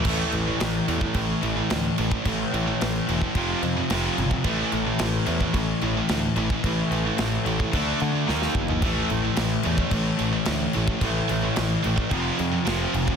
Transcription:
<<
  \new Staff \with { instrumentName = "Overdriven electric guitar" } { \clef bass \time 4/4 \key a \minor \tempo 4 = 109 <a, e a>1 | <a, e a>2 <f, c f>4 <f, c f>4 | <a, e a>1 | <a, e a>2 <d a d'>4 <dis ais dis'>4 |
<a, e a>1 | <a, e a>2 <f, c f>4 <f, c f>4 | }
  \new Staff \with { instrumentName = "Distorted electric guitar" } { \clef bass \time 4/4 \key a \minor <a, e a>8 <a, e>16 <a, e>16 <a, e>8 <a, e>16 <a, e>16 <a, e>8 <a, e>16 <a, e>16 <a, e>8 <a, e>16 <a, e>16 | <a, e>8 <a, e>16 <a, e>16 <a, e>8 <a, e>16 <a, e>16 <f, c f>8 <f, c>16 <f, c>16 <f, c f>8 <f, c>16 <f, c>16 | <a, e a>8 <a, e>16 <a, e>16 <a, e>8 <a, e>16 <a, e>16 <a, e>8 <a, e>16 <a, e>16 <a, e>8 <a, e>16 <a, e>16 | <a, e>8 <a, e>16 <a, e>16 <a, e>8 <a, e>16 <a, e>16 <d a d'>8 <d a>16 <d a>16 <dis ais dis'>8 <dis ais>16 <dis ais>16 |
<a, e a>8 <a, e>16 <a, e>16 <a, e>8 <a, e>16 <a, e>16 <a, e>8 <a, e>16 <a, e>16 <a, e>8 <a, e>16 <a, e>16 | <a, e>8 <a, e>16 <a, e>16 <a, e>8 <a, e>16 <a, e>16 <f, c f>8 <f, c>16 <f, c>16 <f, c f>8 <f, c>16 <f, c>16 | }
  \new Staff \with { instrumentName = "Distorted electric guitar" } { \clef bass \time 4/4 \key a \minor <a, e a>8 <a, e>16 <a, e>16 <a, e>8 <a, e>16 <a, e>16 <a, e>8 <a, e>16 <a, e>16 <a, e>8 <a, e>16 <a, e>16 | <a, e>8 <a, e>16 <a, e>16 <a, e>8 <a, e>16 <a, e>16 <f, c f>8 <f, c>16 <f, c>16 <f, c f>8 <f, c>16 <f, c>16 | <a, e a>8 <a, e>16 <a, e>16 <a, e>8 <a, e>16 <a, e>16 <a, e>8 <a, e>16 <a, e>16 <a, e>8 <a, e>16 <a, e>16 | <a, e>8 <a, e>16 <a, e>16 <a, e>8 <a, e>16 <a, e>16 <d a d'>8 <d a>16 <d a>16 <dis ais dis'>8 <dis ais>16 <dis ais>16 |
<a, e a>8 <a, e>16 <a, e>16 <a, e>8 <a, e>16 <a, e>16 <a, e>8 <a, e>16 <a, e>16 <a, e>8 <a, e>16 <a, e>16 | <a, e>8 <a, e>16 <a, e>16 <a, e>8 <a, e>16 <a, e>16 <f, c f>8 <f, c>16 <f, c>16 <f, c f>8 <f, c>16 <f, c>16 | }
  \new Staff \with { instrumentName = "Picked electric bass" } { \clef bass \time 4/4 \key a \minor a,,8 a,,8 a,,8 e,8 a,,8 a,,8 d,8 a,,8 | a,,8 a,,8 a,,8 e,,8 f,,8 f,8 f,,8 g,,8 | a,,8 a,,8 a,,8 e,8 a,,8 a,,8 d,8 a,,8 | a,,8 a,,8 a,,8 a,,8 d,8 d8 dis,8 g,,8 |
a,,8 a,,8 a,,8 e,8 a,,8 a,,8 d,8 a,,8 | a,,8 a,,8 a,,8 a,,8 f,,8 f,8 f,,8 f,,8 | }
  \new DrumStaff \with { instrumentName = "Drums" } \drummode { \time 4/4 <cymc bd>8 cymc8 <cymc sn>8 cymc16 bd16 <cymc bd>8 cymc8 <cymc sn>8 cymc16 bd16 | <cymc bd>8 cymc8 <cymc sn>8 cymc16 bd16 <cymc bd>8 cymc8 <cymc sn>8 cymc16 bd16 | <cymc bd>8 cymc8 <cymc sn>8 cymc16 bd16 <cymc bd>8 cymc8 <cymc sn>8 cymc16 bd16 | <cymc bd>8 cymc8 <cymc sn>8 cymc16 bd16 <cymc bd>8 cymc8 sn16 sn16 bd16 tomfh16 |
<cymc bd>8 cymc8 <cymc sn>8 cymc16 bd16 <cymc bd>8 cymc8 <cymc sn>8 cymc16 bd16 | <cymc bd>8 cymc8 <cymc sn>8 cymc16 bd16 <cymc bd>8 cymc8 <cymc sn>8 cymc16 bd16 | }
>>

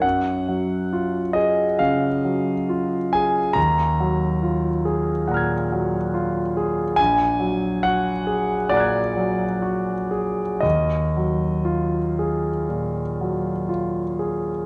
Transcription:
<<
  \new Staff \with { instrumentName = "Grand piano" } { \time 4/4 \key ees \minor \tempo 4 = 68 << { r1 | r2 <ges'' bes'' f''' aes'''>2 | r2 <fis'' bes'' fis''' aes'''>2 | r1 | } \\ { ges''4. ees''8 f''4. aes''8 | bes''2~ bes''8 r4. | aes''4 fis''4 d''2 | ees''2. r4 | } >> }
  \new Staff \with { instrumentName = "Grand piano" } { \time 4/4 \key ees \minor ges,8 ges8 f'8 aes'8 des8 ges8 f'8 aes'8 | ees,8 ges8 f'8 aes'8 bes,8 ges8 f'8 aes'8 | bes,,8 fis8 fis'8 aes'8 bes,8 fis8 fis'8 aes'8 | ees,8 ges8 f'8 aes'8 bes,8 ges8 f'8 aes'8 | }
>>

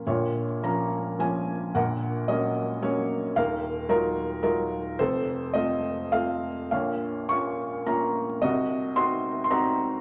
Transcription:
<<
  \new Staff \with { instrumentName = "Felt piano" } { \time 3/4 \key bes \minor \tempo 4 = 108 << { des''4 bes''4 aes''4 | ges''4 ees''4 des''8. r16 | f''4 bes'4 bes'4 | c''4 ees''4 f''8. r16 |
f''4 des'''4 bes''4 | ees''4 c'''8.~ c'''32 c'''32 bes''4 | } \\ { f'4. r4. | bes'4. r4. | bes'4. r4. | a'4. r4. |
des''4. r4. | ges'4. r4. | } >> }
  \new Staff \with { instrumentName = "Felt piano" } { \time 3/4 \key bes \minor <bes,, bes,>4 <f bes des'>4 <f bes des'>4 | <bes,, bes,>4 <ges bes des'>4 <ges bes des'>4 | <ees,, ees,>4 <ges ees' f'>4 <ges ees' f'>4 | <f,, f,>4 <a c' f'>4 <a c' f'>4 |
<bes,, bes,>4 <bes des' f'>4 <bes des' f'>4 | <c, c>4 <c' ees' ges'>4 <c' ees' ges'>4 | }
>>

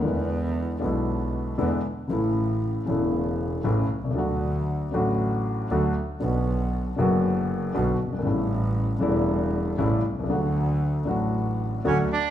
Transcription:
<<
  \new Staff \with { instrumentName = "Bandoneon" } { \time 4/4 \key d \major \tempo 4 = 117 r1 | r1 | r1 | r1 |
r1 | r2. cis'8 d'8 | }
  \new Staff \with { instrumentName = "Grand piano" } { \clef bass \time 4/4 \key d \major <e, d e gis b e'>4. <b,, b, d gis b e'>4. <e, d e gis b e'>8 r8 | <a,, a, cis e a e'>4. <e,, e, cis e a e'>4. <a,, a, cis e a e'>8 r32 b,,32 c,32 cis,32 | <d, d fis a fis'>4. <a,, a, d fis a fis'>4. <d, d fis a fis'>8 r8 | <b,, b, d fis b fis'>4. <fis,, fis, d fis b fis'>4. <b,, b, d fis b fis'>8 r32 fis,,32 g,,32 gis,,32 |
<a,, a, cis g a e'>4. <e,, e, cis g a e'>4. <a,, a, cis g a e'>8 r32 b,,32 c,32 cis,32 | <d, d fis a fis'>4. <a,, a, d fis a fis'>4. <d, d fis a fis'>8 r8 | }
  \new Staff \with { instrumentName = "Double bass" } { \clef bass \time 4/4 \key d \major e,4. b,,4. e,8 r8 | a,,4. e,,4. a,,8 c,8 | d,4. a,,4. d,8 r8 | b,,4. fis,,4. b,,8 g,,8 |
a,,4. e,,4. a,,8 c,8 | d,4. a,,4. d,8 r8 | }
>>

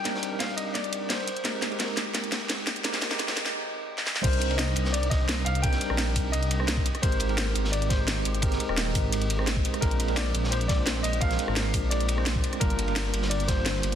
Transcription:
<<
  \new Staff \with { instrumentName = "Grand piano" } { \time 4/4 \key c \minor \tempo 4 = 172 g''4 f''8 ees''8 d''4 c''4~ | c''8 r2. r8 | r1 | c''4 ees''4 d''8 ees''4 f''8 |
g''4. r8 ees''2 | c''2 d''8 c''4.~ | c''8 r2. r8 | bes'4 d''4 c''8 d''4 ees''8 |
f''4. r8 d''2 | bes'2 d''8 c''4. | }
  \new Staff \with { instrumentName = "Tine electric piano" } { \time 4/4 \key c \minor <g c' d' ees' bes'>8. <g c' d' ees' bes'>16 r2. | <aes c' ees' g' bes'>8. <aes c' ees' g' bes'>16 r2. | <aes c' ees' g' bes'>8. <aes c' ees' g' bes'>16 r2. | <g c' d' ees' bes'>8. <g c' d' ees' bes'>16 r4. r16 <g c' d' ees' c''>4~ <g c' d' ees' c''>16 |
<g c' d' ees' bes'>8. <g c' d' ees' bes'>16 r4. r16 <g c' d' ees' c''>8. r8 | <aes c' ees' g' bes'>8. <aes c' ees' g' bes'>16 r4. r16 <aes c' ees' g' c''>4~ <aes c' ees' g' c''>16 | <aes c' ees' g' bes'>8. <aes c' ees' g' bes'>16 r4. r16 <aes c' ees' g' c''>4~ <aes c' ees' g' c''>16 | <aes c' d' f' bes'>8. <aes c' d' f' bes'>16 r4. r16 <aes c' d' f' c''>4~ <aes c' d' f' c''>16 |
<aes c' d' f' bes'>8. <aes c' d' f' bes'>16 r4. r16 <aes c' d' f' c''>4~ <aes c' d' f' c''>16 | <g bes d' f' bes'>8. <g bes d' f' bes'>16 r4. r16 <g bes d' f' c''>4~ <g bes d' f' c''>16 | }
  \new Staff \with { instrumentName = "Detuned saw bass" } { \clef bass \time 4/4 \key c \minor c,8 r16 bes,,8. c,2 r8 | aes,,4. aes,,2 aes,,8~ | aes,,8 r2. r8 | c,4. c,2 c,8~ |
c,8 r16 bes,,8. c,2 r8 | aes,,4. aes,,2 aes,,8~ | aes,,8 r16 ees,,8. aes,,2 r8 | bes,,4. bes,,2 bes,,8~ |
bes,,8 r16 aes,,8. bes,,2 r8 | g,,4. g,,2 g,,8 | }
  \new DrumStaff \with { instrumentName = "Drums" } \drummode { \time 4/4 <hh cymr sn>16 sn16 <hh cymr>8 <hh cymr sn>8 <hh cymr>8 <hh cymr sn>16 hh16 <hh cymr>8 <hh cymr sn>8 <hh cymr>16 hh16 | <hh cymr sn>8 <hh cymr sn>16 cymr16 <hh cymr sn>8 <hh cymr sn>8 <hh cymr sn>16 hh16 <hh cymr sn>8 <hh cymr sn>8 <hh cymr sn>16 hh16 | <hh cymr sn>16 <hh sn>16 <hh cymr sn>16 sn16 <hh cymr sn>16 <cymr sn>16 <hh sn>16 <cymr sn>16 r4 r16 sn16 sn16 sn16 | <cymc hh bd cymr>16 hh16 <hh cymr>16 cymr16 <hh cymr sn>8 <hh cymr>16 sn16 <hh cymr>16 hh16 <hh bd cymr sn>8 <hh cymr sn>8 <hh cymr>16 hh16 |
<hh bd cymr>16 <hh sn>16 <hh cymr>16 ss16 <hh cymr sn>8 <hho bd cymr>8 <hh cymr>16 hh16 <hh cymr>16 ss16 <hh cymr sn>16 bd16 <hh cymr>16 <hh ss>16 | <hh bd cymr>16 hh16 <hh cymr>16 cymr16 <hh cymr sn>8 <hh cymr>16 sn16 <hh cymr>16 hh16 <hh bd cymr sn>8 <hh cymr sn>8 <hh cymr>16 hh16 | <hh bd cymr>16 <hh sn>16 <hh cymr>16 ss16 <hh cymr sn>16 ss16 <hho bd cymr>8 <hh cymr>16 hh16 <hh cymr>16 ss16 <hh cymr sn>16 bd16 <hh cymr>16 <hh ss>16 | <hh bd cymr>16 hh16 <hh cymr>16 cymr16 <hh cymr sn>8 <hh cymr>16 sn16 <hh cymr>16 hh16 <hh bd cymr sn>8 <hh cymr sn>8 <hh cymr>16 hh16 |
<hh bd cymr>16 <hh sn>16 <hh cymr>16 ss16 <hh cymr sn>8 <hho bd cymr>8 <hh cymr>16 hh16 <hh cymr>16 ss16 <hh cymr sn>16 bd16 <hh cymr>16 <hh ss>16 | <hh bd cymr>16 hh16 <hh cymr>16 cymr16 <hh cymr sn>8 <hh cymr>16 sn16 <hh cymr>16 hh16 <hh bd cymr sn>8 <hh cymr sn>8 <hh cymr>8 | }
>>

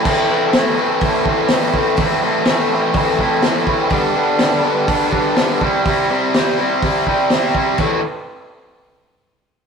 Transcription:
<<
  \new Staff \with { instrumentName = "Overdriven electric guitar" } { \time 4/4 \key a \minor \tempo 4 = 124 <a, e a c' e'>8 <a, e a c' e'>8 <a, e a c' e'>8 <a, e a c' e'>8 <a, e a c' e'>8 <a, e a c' e'>8 <a, e a c' e'>8 <a, e a c' e'>8 | <a, e a c' e'>8 <a, e a c' e'>8 <a, e a c' e'>8 <a, e a c' e'>8 <a, e a c' e'>8 <a, e a c' e'>8 <a, e a c' e'>8 <a, e a c' e'>8 | <g, d g b d'>8 <g, d g b d'>8 <g, d g b d'>8 <g, d g b d'>8 <g, d g b d'>8 <g, d g b d'>8 <g, d g b d'>8 <c g c' e'>8 | <c g c' e'>8 <c g c' e'>8 <c g c' e'>8 <c g c' e'>8 <c g c' e'>8 <c g c' e'>8 <c g c' e'>8 <c g c' e'>8 |
<a, e a c' e'>8 r2. r8 | }
  \new DrumStaff \with { instrumentName = "Drums" } \drummode { \time 4/4 <cymc bd>4 <hho sn>4 <hho bd>8 bd8 <hho sn>8 bd8 | <hho bd>4 <hho sn>4 <hho bd>8 bd8 <hho sn>8 bd8 | <hho bd>4 <hho sn>4 <hho bd>8 bd8 <hho sn>8 bd8 | <hho bd>4 <hho sn>4 <hho bd>8 bd8 <hho sn>8 bd8 |
<cymc bd>4 r4 r4 r4 | }
>>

